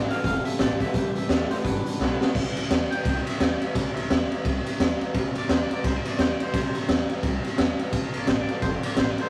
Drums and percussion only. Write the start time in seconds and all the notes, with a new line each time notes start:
0.10 closed hi-hat
0.24 kick, closed hi-hat
0.45 closed hi-hat
0.59 snare, closed hi-hat
0.80 kick, closed hi-hat
0.94 kick, closed hi-hat
1.16 closed hi-hat
1.29 snare, closed hi-hat
1.51 closed hi-hat
1.65 kick, closed hi-hat
1.86 closed hi-hat
2.00 snare
2.21 snare
2.35 kick, crash
2.57 ride
2.70 snare, ride
2.92 ride
3.05 kick, ride
3.27 ride
3.40 snare, ride
3.62 ride
3.75 kick, ride
3.97 ride
4.10 snare, ride
4.32 ride
4.45 kick, ride
4.66 ride
4.80 snare, ride
5.01 ride
5.14 kick, ride
5.35 ride
5.49 snare, ride
5.71 ride
5.84 kick, ride
6.05 ride
6.19 snare, ride
6.40 ride
6.54 kick, ride
6.75 ride
6.89 snare, ride
7.09 ride
7.23 kick, ride
7.44 ride
7.58 snare, ride
7.79 ride
7.93 kick, ride
8.14 ride
8.27 snare, ride
8.48 ride
8.62 kick, ride
8.83 ride
8.97 snare, ride
9.18 ride